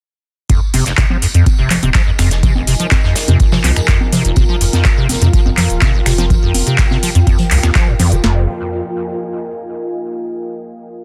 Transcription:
0.50 analog synth bass F1, acid bass F2, ambient pad F4, kick, closed hi-hat, tambourine, cabasa
0.74 analog synth bass F1, acid bass C3, ambient pad A#4, open hi-hat, tambourine, high conga, cabasa
0.86 acid bass F1, ambient pad D#5, snare, closed hi-hat, cabasa
0.98 acid bass C3, kick, snare, clap, closed hi-hat, tambourine, cabasa
1.06 acid bass F3, ambient pad G#5
1.10 high conga
1.22 acid bass F2, open hi-hat, tambourine, cabasa
1.34 analog synth bass F2, acid bass F2, closed hi-hat, cabasa
1.46 kick, closed hi-hat, tambourine, high conga, cabasa
1.59 analog synth bass F1, acid bass C3
1.70 acid bass F1, snare, clap, open hi-hat, tambourine, low conga, cabasa
1.83 analog synth bass D#1, acid bass C3, closed hi-hat, high conga, cabasa
1.94 acid bass F3, finger snap, kick, snare, clap, closed hi-hat, tambourine, cabasa
2.07 acid bass F2
2.18 analog synth bass F1, acid bass F2, finger snap, snare, open hi-hat, tambourine, high conga, cabasa
2.31 snare, closed hi-hat, cabasa
2.43 acid bass C3, kick, closed hi-hat, tambourine, low conga, cabasa
2.55 acid bass F1, analog synth bass F1, high conga
2.67 analog synth bass F1, acid bass C3, open hi-hat, tambourine, cabasa
2.80 acid bass F3, closed hi-hat, cabasa
2.91 acid bass F2, kick, snare, clap, closed hi-hat, tambourine, high conga, cabasa
3.04 acid bass F2, snare
3.15 snare, open hi-hat, tambourine, cabasa
3.28 analog synth bass F2, acid bass C3, closed hi-hat, high conga, cabasa
3.40 acid bass F1, kick, closed hi-hat, tambourine, cabasa
3.52 acid bass C3, snare, tambourine, low conga
3.64 analog synth bass C2, acid bass F3, clap, open hi-hat, high conga, cabasa
3.76 acid bass F2, finger snap, closed hi-hat, tambourine, cabasa
3.88 acid bass F2, kick, snare, clap, closed hi-hat, tambourine, cabasa
4.01 high conga
4.12 acid bass C3, open hi-hat, tambourine, low conga, cabasa
4.25 acid bass F1, analog synth bass F1, closed hi-hat, cabasa
4.36 analog synth bass F1, acid bass C3, kick, closed hi-hat, tambourine, high conga, cabasa
4.49 acid bass F3
4.61 analog synth bass F1, acid bass F2, open hi-hat, tambourine, cabasa
4.73 acid bass F2, snare, closed hi-hat, high conga, cabasa
4.82 ambient pad F5 G5, kick, snare, clap, closed hi-hat, tambourine, cabasa
4.97 acid bass C3
5.09 acid bass F1, open hi-hat, tambourine, high conga, cabasa
5.21 analog synth bass F2, acid bass C3, closed hi-hat, cabasa
5.33 acid bass F3, kick, closed hi-hat, tambourine, cabasa
5.46 analog synth bass F1, acid bass F2, high conga
5.57 acid bass F2, snare, clap, open hi-hat, tambourine, low conga, cabasa
5.70 analog synth bass D#1, closed hi-hat, cabasa
5.82 acid bass C3, finger snap, kick, snare, clap, closed hi-hat, tambourine, high conga, cabasa
5.94 acid bass F1
6.06 analog synth bass F1, acid bass C3, finger snap, snare, open hi-hat, tambourine, cabasa
6.18 acid bass F3, snare, closed hi-hat, high conga, cabasa
6.30 acid bass F2, kick, closed hi-hat, tambourine, low conga, cabasa
6.42 analog synth bass F1, acid bass F2
6.54 analog synth bass F1, open hi-hat, tambourine, high conga, cabasa
6.67 acid bass C3, closed hi-hat, cabasa
6.78 acid bass F1, kick, snare, clap, closed hi-hat, tambourine, cabasa
6.91 acid bass C3, snare, high conga
7.03 acid bass F3, open hi-hat, tambourine, cabasa
7.15 acid bass F2, analog synth bass F2, closed hi-hat, cabasa
7.27 acid bass F2, kick, closed hi-hat, tambourine, high conga, cabasa
7.39 closed hi-hat, low conga
7.51 analog synth bass C2, acid bass D#2, clap, open hi-hat, tambourine, cabasa
7.63 acid bass D#2, finger snap, snare, closed hi-hat, high conga, cabasa
7.75 acid bass F3, kick, snare, clap, closed hi-hat, tambourine, cabasa
7.88 acid bass G#2
7.99 acid bass F2, open hi-hat, tambourine, high conga, low conga, cabasa
8.12 analog synth bass F1, acid bass G#3, closed hi-hat, cabasa
8.24 analog synth bass F1, acid bass F2, ambient pad F4, snare
8.31 ambient pad A#4
8.38 ambient pad D#5
8.46 ambient pad G#5

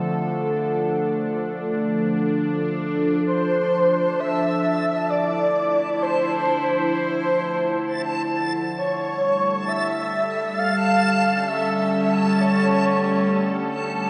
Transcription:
Already playing: synth drone D3 A3, ambient pad F3 D4 A4
3.25 synth drone D3 A3, soft synth lead C5, synth texture A5
4.20 soft synth lead E5
4.70 ambient pad E4
5.10 soft synth lead D5
5.74 ambient pad C5
6.02 soft synth lead C5
6.92 soft synth lead C5
8.78 soft synth lead C#5
9.05 ambient pad G3
9.68 soft synth lead E5
9.89 ambient pad A4
10.59 soft synth lead F5
10.92 ambient pad C#4
11.48 soft synth lead E5
12.41 soft synth lead C#5

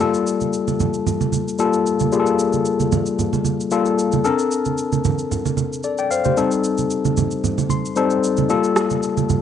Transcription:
0.00 tine electric piano G3 A#3 F4 A4, shaker
0.14 shaker
0.27 shaker
0.41 high conga, shaker
0.53 shaker
0.68 high conga, shaker
0.80 high conga, low conga, shaker
0.94 shaker
1.07 low conga, shaker
1.21 high conga, shaker
1.32 high conga, shaker
1.48 shaker
1.59 tine electric piano G3 A#3 F4 A4, shaker
1.73 shaker
1.87 shaker
2.00 high conga, shaker
2.12 tine electric piano G3 A#3 F4 G#4, shaker
2.19 tine electric piano A4
2.26 shaker
2.39 shaker
2.53 high conga, shaker
2.66 shaker
2.80 high conga, shaker
2.92 high conga, low conga, shaker
3.06 shaker
3.19 low conga, shaker
3.33 high conga, shaker
3.45 high conga, shaker
3.61 shaker
3.71 tine electric piano G3 A#3 F4 A4, shaker
3.86 shaker
3.99 shaker
4.12 high conga, shaker
4.24 tine electric piano C4 D4 A4 A#4, shaker
4.39 shaker
4.52 shaker
4.65 high conga, shaker
4.78 shaker
4.92 high conga, shaker
5.05 high conga, low conga, shaker
5.19 shaker
5.31 low conga, shaker
5.45 high conga, shaker
5.57 high conga, shaker
5.73 shaker
5.83 tine electric piano A4 D5, shaker
5.98 tine electric piano D5 G5, shaker
6.11 tine electric piano C5 F5, shaker
6.25 tine electric piano G4 C5, high conga, shaker
6.37 tine electric piano G3 C4 D#4 A4, shaker
6.51 shaker
6.64 shaker
6.78 high conga, shaker
6.90 shaker
7.05 high conga, shaker
7.17 high conga, low conga, shaker
7.31 shaker
7.44 low conga, shaker
7.58 high conga, shaker
7.69 tine electric piano C6, high conga, shaker
7.85 shaker
7.96 tine electric piano G3 C4 D#4 A4 C5, shaker
8.10 shaker
8.24 shaker
8.37 high conga, shaker
8.49 tine electric piano G3 A#3 F4 A4, shaker
8.64 shaker
8.76 cross-stick, shaker
8.90 high conga, shaker
9.03 shaker
9.17 high conga, shaker
9.29 high conga, low conga, shaker

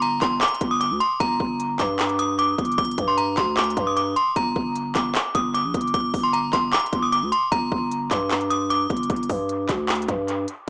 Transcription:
Already playing: 808-style bass G1
0.02 synth bell A#5, closed hi-hat
0.22 808-style bass G1, synth bell C6, kick, clap, closed hi-hat
0.41 synth bell D6, clap, closed hi-hat
0.48 closed hi-hat
0.54 closed hi-hat
0.61 808-style bass G1, kick, closed hi-hat
0.71 synth bell D#6
0.81 synth bell D6, closed hi-hat
0.90 808-style bass D2
1.00 synth bell C6, closed hi-hat
1.20 808-style bass G1, synth bell A#5, kick, closed hi-hat
1.40 808-style bass G1, kick
1.60 closed hi-hat
1.79 808-style bass G2, synth bell D6, kick, clap, closed hi-hat
1.99 clap, closed hi-hat
2.09 closed hi-hat
2.19 synth bell D#6, closed hi-hat
2.39 synth bell D6, closed hi-hat
2.58 808-style bass G1, kick, closed hi-hat
2.65 closed hi-hat
2.72 closed hi-hat
2.78 808-style bass G1, synth bell D6, kick, closed hi-hat
2.85 closed hi-hat
2.91 closed hi-hat
2.98 808-style bass G2, kick, closed hi-hat
3.08 synth bell C6
3.18 synth bell A#5, closed hi-hat
3.37 808-style bass D2, synth bell C6, kick, clap, closed hi-hat
3.57 synth bell D6, clap, closed hi-hat
3.64 closed hi-hat
3.70 closed hi-hat
3.77 808-style bass G2, kick, closed hi-hat
3.87 synth bell D#6
3.97 synth bell D6, closed hi-hat
4.16 synth bell C6, closed hi-hat
4.36 808-style bass G1, synth bell A#5, kick, closed hi-hat
4.56 808-style bass G1, kick
4.76 closed hi-hat
4.95 808-style bass G1, synth bell D6, kick, clap, closed hi-hat
5.15 clap, closed hi-hat
5.35 808-style bass G1, synth bell D#6, kick, closed hi-hat
5.54 synth bell D6, closed hi-hat
5.64 808-style bass A#1
5.74 808-style bass G1, kick, closed hi-hat
5.81 closed hi-hat
5.87 closed hi-hat
5.94 808-style bass G1, synth bell D6, kick, closed hi-hat
6.14 808-style bass G1, kick, open hi-hat
6.23 synth bell C6
6.33 synth bell A#5, closed hi-hat
6.53 808-style bass G1, synth bell C6, kick, clap, closed hi-hat
6.73 synth bell D6, clap, closed hi-hat
6.79 closed hi-hat
6.86 closed hi-hat
6.93 808-style bass G1, kick, closed hi-hat
7.03 synth bell D#6
7.12 synth bell D6, closed hi-hat
7.22 808-style bass D2
7.32 synth bell C6, closed hi-hat
7.52 808-style bass G1, synth bell A#5, kick, closed hi-hat
7.72 808-style bass G1, kick
7.91 closed hi-hat
8.11 808-style bass G2, synth bell D6, kick, clap, closed hi-hat
8.31 clap, closed hi-hat
8.41 closed hi-hat
8.50 synth bell D#6, closed hi-hat
8.70 synth bell D6, closed hi-hat
8.90 808-style bass G1, kick, closed hi-hat
8.97 closed hi-hat
9.03 closed hi-hat
9.10 808-style bass G1, kick, closed hi-hat
9.16 closed hi-hat
9.23 closed hi-hat
9.29 808-style bass G2, kick, open hi-hat
9.49 closed hi-hat
9.69 808-style bass D2, kick, clap, closed hi-hat
9.89 clap, closed hi-hat
9.95 closed hi-hat
10.02 closed hi-hat
10.08 808-style bass G2, kick, closed hi-hat
10.28 closed hi-hat
10.48 closed hi-hat

